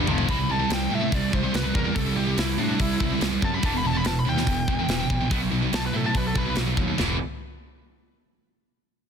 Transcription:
0.07 F1 F2 C3 F3, floor tom
0.18 floor tom
0.28 C2 C3 G3 C4 B5, kick, open hi-hat
0.38 C3 G3
0.49 C2 C3 G3 A5
0.60 C3 G3
0.70 C2 C3 G3 G5, snare, open hi-hat
0.91 A2 C3 G3 E5
1.01 C3 G3
1.12 C2 C3 G3 D5, kick, open hi-hat
1.33 C2 C3 G3 C5, kick
1.44 C3 G3
1.54 C2 C3 G3 B4, snare, open hi-hat
1.64 C3 G3
1.75 E2 C3 G3 A#4, kick
1.85 C3 G3
1.96 C2 C3 G3 A4, kick, open hi-hat
2.06 C3 G3
2.16 C2 C3 G3 G4
2.27 C3 G3
2.38 C2 C3 G3 E4, snare, open hi-hat
2.58 A2 C3 G3 D4
2.69 C3 G3
2.79 C2 C3 G3 E4, kick, open hi-hat
3.00 C2 C3 G3, kick
3.12 C3 G3
3.21 C2 C3 G3, snare, open hi-hat
3.32 C3 G3
3.42 F#2 C3 G3 A5, kick
3.54 C3 G3 B5
3.63 E1 E2 B2 E3 A5, kick, open hi-hat
3.75 E2 B2 B5
3.84 E1 E2 B2 A5
3.95 E2 B2 B5
4.05 E1 E2 B2 A5, snare, open hi-hat
4.19 B5
4.26 D#2 E2 B2 G5
4.37 E2 B2, snare
4.47 E1 E2 B2, kick, open hi-hat
4.67 E1 E2 B2, kick
4.79 E2 B2
4.89 E1 E2 B2, snare, open hi-hat
5.00 E2 B2
5.10 A#1 E2 B2, kick
5.21 E2 B2
5.31 B1 B2 F#3 B3, kick, open hi-hat
5.41 B2 F#3
5.51 B1 B2 F#3
5.63 B2 F#3
5.73 B1 B2 F#3 A5, snare, open hi-hat
5.86 B4
5.93 A2 B2 F#3 A4
6.04 B2 F#3 A5
6.14 B1 B2 F#3 B4, kick, open hi-hat
6.27 A4
6.35 B1 B2 F#3 B4, kick
6.46 B2 F#3
6.56 B1 B2 F#3, snare, open hi-hat
6.66 B2 F#3
6.77 D#2 B2 F#3, kick
6.87 B2 F#3
6.98 E1 E2 B2 E3, snare, floor tom, splash

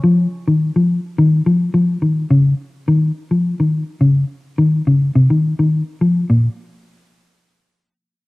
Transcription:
0.04 F3
0.47 D#3
0.76 F3
1.18 D#3
1.46 F3
1.74 F3
2.02 D#3
2.31 C#3
2.88 D#3
3.31 F3
3.60 D#3
4.01 C#3
4.58 D#3
4.87 C#3
5.15 C3
5.30 D#3
5.59 D#3
6.01 F3
6.30 A#2

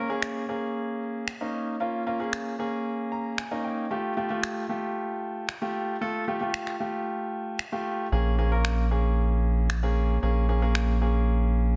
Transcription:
0.09 A#3 C#4 G#4
0.22 finger snap
0.49 A#3 C#4 G#4
1.28 finger snap
1.41 A#3 C#4 D#4
1.80 A#3 C#4 F4
2.06 A#3 C#4 F4
2.20 A#3 C#4 G#4
2.33 finger snap
2.59 A#3 C#4 G#4
3.12 A#5
3.38 G#5, finger snap
3.51 A#3 C#4 D#4
3.64 G5
3.91 A3 F4 G4
4.17 A3 F4 G4
4.30 A3 F4 G4
4.43 finger snap
4.69 A3 F4 G4
5.49 finger snap
5.62 A3 F4 G4
6.01 A3 F4 A4
6.28 A3 F4 G4
6.41 A3 F4 G4
6.54 finger snap
6.67 finger snap
6.80 A3 F4 G4
7.59 finger snap
7.72 A3 F4 G4
8.12 A#1 A#3 C#4 G#4
8.38 A#3 C#4 G#4
8.51 A#3 C#4 A#4
8.65 finger snap
8.91 A#3 C#4 G#4
9.70 finger snap
9.83 A#3 C#4 G#4
10.22 A#1 A#3 C#4 G#4
10.49 A#3 C#4 G#4
10.62 A#3 C#4 G#4
10.75 finger snap
11.01 A#3 C#4 G#4

